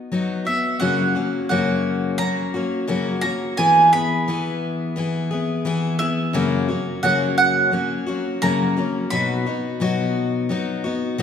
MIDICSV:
0, 0, Header, 1, 3, 480
1, 0, Start_track
1, 0, Tempo, 692841
1, 557, Time_signature, 4, 2, 24, 8
1, 7776, End_track
2, 0, Start_track
2, 0, Title_t, "Mandolin"
2, 0, Program_c, 0, 25
2, 322, Note_on_c, 0, 76, 74
2, 549, Note_off_c, 0, 76, 0
2, 552, Note_on_c, 0, 78, 83
2, 1007, Note_off_c, 0, 78, 0
2, 1034, Note_on_c, 0, 78, 70
2, 1507, Note_off_c, 0, 78, 0
2, 1510, Note_on_c, 0, 82, 113
2, 2218, Note_off_c, 0, 82, 0
2, 2226, Note_on_c, 0, 82, 106
2, 2472, Note_off_c, 0, 82, 0
2, 2475, Note_on_c, 0, 80, 95
2, 2718, Note_off_c, 0, 80, 0
2, 2721, Note_on_c, 0, 83, 97
2, 3170, Note_off_c, 0, 83, 0
2, 4149, Note_on_c, 0, 76, 94
2, 4869, Note_on_c, 0, 78, 89
2, 4894, Note_off_c, 0, 76, 0
2, 5095, Note_off_c, 0, 78, 0
2, 5111, Note_on_c, 0, 78, 99
2, 5806, Note_off_c, 0, 78, 0
2, 5832, Note_on_c, 0, 82, 111
2, 6304, Note_off_c, 0, 82, 0
2, 6307, Note_on_c, 0, 83, 97
2, 7727, Note_off_c, 0, 83, 0
2, 7776, End_track
3, 0, Start_track
3, 0, Title_t, "Steel-string acoustic guitar"
3, 0, Program_c, 1, 25
3, 0, Note_on_c, 1, 59, 42
3, 0, Note_on_c, 1, 63, 44
3, 0, Note_on_c, 1, 66, 53
3, 78, Note_off_c, 1, 59, 0
3, 78, Note_off_c, 1, 66, 0
3, 80, Note_on_c, 1, 54, 68
3, 81, Note_off_c, 1, 63, 0
3, 86, Note_on_c, 1, 59, 66
3, 89, Note_on_c, 1, 63, 75
3, 96, Note_on_c, 1, 66, 78
3, 304, Note_off_c, 1, 66, 0
3, 312, Note_on_c, 1, 66, 59
3, 319, Note_off_c, 1, 54, 0
3, 322, Note_off_c, 1, 59, 0
3, 323, Note_off_c, 1, 63, 0
3, 331, Note_on_c, 1, 59, 51
3, 555, Note_off_c, 1, 66, 0
3, 555, Note_on_c, 1, 42, 80
3, 558, Note_on_c, 1, 49, 82
3, 562, Note_on_c, 1, 54, 78
3, 563, Note_off_c, 1, 59, 0
3, 566, Note_on_c, 1, 58, 73
3, 567, Note_on_c, 1, 61, 82
3, 567, Note_on_c, 1, 66, 82
3, 788, Note_off_c, 1, 66, 0
3, 795, Note_off_c, 1, 61, 0
3, 796, Note_off_c, 1, 42, 0
3, 796, Note_on_c, 1, 66, 49
3, 797, Note_off_c, 1, 49, 0
3, 798, Note_off_c, 1, 58, 0
3, 799, Note_off_c, 1, 54, 0
3, 804, Note_on_c, 1, 61, 53
3, 807, Note_on_c, 1, 58, 50
3, 814, Note_on_c, 1, 54, 39
3, 1036, Note_off_c, 1, 66, 0
3, 1038, Note_off_c, 1, 54, 0
3, 1038, Note_off_c, 1, 61, 0
3, 1039, Note_off_c, 1, 58, 0
3, 1040, Note_on_c, 1, 42, 84
3, 1043, Note_on_c, 1, 49, 72
3, 1046, Note_on_c, 1, 54, 78
3, 1046, Note_on_c, 1, 61, 94
3, 1047, Note_on_c, 1, 58, 93
3, 1052, Note_on_c, 1, 66, 82
3, 1507, Note_off_c, 1, 54, 0
3, 1515, Note_on_c, 1, 54, 66
3, 1516, Note_off_c, 1, 58, 0
3, 1518, Note_off_c, 1, 42, 0
3, 1520, Note_off_c, 1, 49, 0
3, 1522, Note_off_c, 1, 61, 0
3, 1524, Note_off_c, 1, 66, 0
3, 1524, Note_on_c, 1, 58, 58
3, 1531, Note_on_c, 1, 61, 61
3, 1534, Note_on_c, 1, 66, 71
3, 1751, Note_off_c, 1, 66, 0
3, 1756, Note_off_c, 1, 54, 0
3, 1758, Note_off_c, 1, 61, 0
3, 1760, Note_on_c, 1, 66, 57
3, 1761, Note_off_c, 1, 58, 0
3, 1766, Note_on_c, 1, 61, 54
3, 1773, Note_on_c, 1, 58, 55
3, 1779, Note_on_c, 1, 54, 50
3, 1989, Note_off_c, 1, 54, 0
3, 1992, Note_off_c, 1, 58, 0
3, 1992, Note_on_c, 1, 42, 77
3, 1994, Note_on_c, 1, 49, 77
3, 1997, Note_off_c, 1, 61, 0
3, 1997, Note_off_c, 1, 66, 0
3, 1997, Note_on_c, 1, 54, 85
3, 2000, Note_on_c, 1, 58, 88
3, 2005, Note_on_c, 1, 61, 92
3, 2005, Note_on_c, 1, 66, 83
3, 2231, Note_off_c, 1, 66, 0
3, 2234, Note_off_c, 1, 42, 0
3, 2235, Note_off_c, 1, 49, 0
3, 2237, Note_off_c, 1, 54, 0
3, 2237, Note_off_c, 1, 61, 0
3, 2238, Note_off_c, 1, 58, 0
3, 2240, Note_on_c, 1, 66, 58
3, 2245, Note_on_c, 1, 61, 56
3, 2250, Note_on_c, 1, 58, 56
3, 2254, Note_on_c, 1, 54, 45
3, 2478, Note_off_c, 1, 66, 0
3, 2480, Note_off_c, 1, 54, 0
3, 2481, Note_off_c, 1, 61, 0
3, 2482, Note_off_c, 1, 58, 0
3, 2483, Note_on_c, 1, 52, 81
3, 2484, Note_on_c, 1, 59, 89
3, 2487, Note_on_c, 1, 64, 86
3, 2490, Note_on_c, 1, 68, 106
3, 2711, Note_off_c, 1, 68, 0
3, 2719, Note_off_c, 1, 52, 0
3, 2719, Note_off_c, 1, 64, 0
3, 2719, Note_on_c, 1, 68, 49
3, 2720, Note_off_c, 1, 59, 0
3, 2727, Note_on_c, 1, 64, 42
3, 2733, Note_on_c, 1, 59, 45
3, 2957, Note_off_c, 1, 68, 0
3, 2959, Note_off_c, 1, 59, 0
3, 2962, Note_off_c, 1, 64, 0
3, 2963, Note_on_c, 1, 52, 74
3, 2968, Note_on_c, 1, 59, 83
3, 2973, Note_on_c, 1, 64, 79
3, 2977, Note_on_c, 1, 68, 89
3, 3427, Note_off_c, 1, 52, 0
3, 3435, Note_off_c, 1, 59, 0
3, 3435, Note_on_c, 1, 52, 72
3, 3442, Note_off_c, 1, 64, 0
3, 3444, Note_on_c, 1, 59, 76
3, 3446, Note_off_c, 1, 68, 0
3, 3451, Note_on_c, 1, 64, 77
3, 3458, Note_on_c, 1, 68, 77
3, 3669, Note_off_c, 1, 68, 0
3, 3675, Note_off_c, 1, 52, 0
3, 3677, Note_on_c, 1, 68, 63
3, 3680, Note_off_c, 1, 59, 0
3, 3681, Note_off_c, 1, 64, 0
3, 3689, Note_on_c, 1, 64, 59
3, 3696, Note_on_c, 1, 59, 54
3, 3910, Note_off_c, 1, 59, 0
3, 3914, Note_on_c, 1, 52, 80
3, 3916, Note_off_c, 1, 68, 0
3, 3917, Note_off_c, 1, 64, 0
3, 3919, Note_on_c, 1, 59, 91
3, 3925, Note_on_c, 1, 64, 94
3, 3928, Note_on_c, 1, 68, 99
3, 4138, Note_off_c, 1, 68, 0
3, 4146, Note_on_c, 1, 68, 55
3, 4148, Note_off_c, 1, 64, 0
3, 4155, Note_off_c, 1, 52, 0
3, 4157, Note_off_c, 1, 59, 0
3, 4157, Note_on_c, 1, 64, 57
3, 4165, Note_on_c, 1, 59, 51
3, 4387, Note_on_c, 1, 42, 89
3, 4391, Note_off_c, 1, 68, 0
3, 4393, Note_off_c, 1, 59, 0
3, 4393, Note_on_c, 1, 54, 80
3, 4395, Note_off_c, 1, 64, 0
3, 4395, Note_on_c, 1, 49, 91
3, 4396, Note_on_c, 1, 58, 99
3, 4398, Note_on_c, 1, 61, 92
3, 4400, Note_on_c, 1, 66, 104
3, 4623, Note_off_c, 1, 66, 0
3, 4630, Note_off_c, 1, 61, 0
3, 4631, Note_off_c, 1, 42, 0
3, 4631, Note_on_c, 1, 66, 52
3, 4634, Note_off_c, 1, 54, 0
3, 4635, Note_off_c, 1, 49, 0
3, 4636, Note_off_c, 1, 58, 0
3, 4638, Note_on_c, 1, 61, 46
3, 4644, Note_on_c, 1, 58, 45
3, 4650, Note_on_c, 1, 54, 42
3, 4868, Note_on_c, 1, 42, 88
3, 4869, Note_off_c, 1, 54, 0
3, 4872, Note_off_c, 1, 58, 0
3, 4872, Note_on_c, 1, 49, 96
3, 4873, Note_off_c, 1, 61, 0
3, 4873, Note_off_c, 1, 66, 0
3, 4878, Note_on_c, 1, 54, 91
3, 4880, Note_on_c, 1, 58, 85
3, 4881, Note_on_c, 1, 61, 95
3, 4881, Note_on_c, 1, 66, 92
3, 5341, Note_off_c, 1, 54, 0
3, 5343, Note_off_c, 1, 58, 0
3, 5344, Note_on_c, 1, 54, 56
3, 5348, Note_off_c, 1, 61, 0
3, 5351, Note_on_c, 1, 58, 59
3, 5352, Note_off_c, 1, 42, 0
3, 5354, Note_off_c, 1, 49, 0
3, 5356, Note_on_c, 1, 61, 68
3, 5361, Note_off_c, 1, 66, 0
3, 5364, Note_on_c, 1, 66, 64
3, 5580, Note_off_c, 1, 66, 0
3, 5587, Note_off_c, 1, 61, 0
3, 5588, Note_on_c, 1, 66, 57
3, 5590, Note_off_c, 1, 54, 0
3, 5591, Note_off_c, 1, 58, 0
3, 5596, Note_on_c, 1, 61, 51
3, 5599, Note_on_c, 1, 58, 53
3, 5604, Note_on_c, 1, 54, 52
3, 5832, Note_off_c, 1, 54, 0
3, 5832, Note_off_c, 1, 66, 0
3, 5833, Note_on_c, 1, 42, 89
3, 5834, Note_off_c, 1, 58, 0
3, 5836, Note_off_c, 1, 61, 0
3, 5838, Note_on_c, 1, 49, 89
3, 5840, Note_on_c, 1, 54, 78
3, 5842, Note_on_c, 1, 58, 83
3, 5845, Note_on_c, 1, 61, 84
3, 5845, Note_on_c, 1, 66, 89
3, 6064, Note_off_c, 1, 66, 0
3, 6071, Note_off_c, 1, 61, 0
3, 6072, Note_on_c, 1, 66, 55
3, 6075, Note_off_c, 1, 42, 0
3, 6075, Note_off_c, 1, 58, 0
3, 6077, Note_off_c, 1, 49, 0
3, 6078, Note_off_c, 1, 54, 0
3, 6080, Note_on_c, 1, 61, 52
3, 6083, Note_on_c, 1, 58, 51
3, 6087, Note_on_c, 1, 54, 43
3, 6309, Note_off_c, 1, 54, 0
3, 6314, Note_off_c, 1, 66, 0
3, 6317, Note_on_c, 1, 47, 91
3, 6317, Note_on_c, 1, 54, 78
3, 6318, Note_off_c, 1, 61, 0
3, 6319, Note_off_c, 1, 58, 0
3, 6322, Note_on_c, 1, 59, 82
3, 6324, Note_on_c, 1, 66, 84
3, 6325, Note_on_c, 1, 63, 79
3, 6548, Note_off_c, 1, 66, 0
3, 6556, Note_off_c, 1, 63, 0
3, 6557, Note_off_c, 1, 47, 0
3, 6557, Note_off_c, 1, 54, 0
3, 6557, Note_on_c, 1, 66, 53
3, 6559, Note_off_c, 1, 59, 0
3, 6564, Note_on_c, 1, 63, 51
3, 6575, Note_on_c, 1, 59, 44
3, 6789, Note_off_c, 1, 63, 0
3, 6789, Note_on_c, 1, 47, 72
3, 6790, Note_off_c, 1, 59, 0
3, 6793, Note_off_c, 1, 66, 0
3, 6797, Note_on_c, 1, 54, 86
3, 6798, Note_on_c, 1, 59, 86
3, 6798, Note_on_c, 1, 63, 76
3, 6802, Note_on_c, 1, 66, 103
3, 7260, Note_off_c, 1, 54, 0
3, 7268, Note_off_c, 1, 59, 0
3, 7268, Note_on_c, 1, 54, 68
3, 7274, Note_off_c, 1, 47, 0
3, 7275, Note_off_c, 1, 63, 0
3, 7276, Note_on_c, 1, 59, 73
3, 7277, Note_off_c, 1, 66, 0
3, 7284, Note_on_c, 1, 63, 82
3, 7285, Note_on_c, 1, 66, 74
3, 7501, Note_off_c, 1, 66, 0
3, 7510, Note_on_c, 1, 66, 62
3, 7511, Note_off_c, 1, 63, 0
3, 7514, Note_off_c, 1, 54, 0
3, 7517, Note_off_c, 1, 59, 0
3, 7519, Note_on_c, 1, 63, 54
3, 7525, Note_on_c, 1, 59, 62
3, 7747, Note_off_c, 1, 59, 0
3, 7748, Note_off_c, 1, 63, 0
3, 7748, Note_on_c, 1, 47, 92
3, 7749, Note_on_c, 1, 54, 91
3, 7751, Note_off_c, 1, 66, 0
3, 7755, Note_on_c, 1, 59, 103
3, 7776, Note_off_c, 1, 47, 0
3, 7776, Note_off_c, 1, 54, 0
3, 7776, Note_off_c, 1, 59, 0
3, 7776, End_track
0, 0, End_of_file